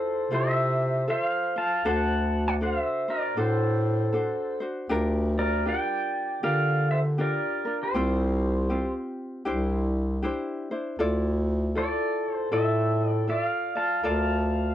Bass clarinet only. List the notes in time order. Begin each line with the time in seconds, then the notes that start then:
0.31 C3
1.84 D2
3.37 A2
4.90 D2
6.42 D3
7.95 C2
9.47 C2
10.99 D2
12.51 A2
14.03 D2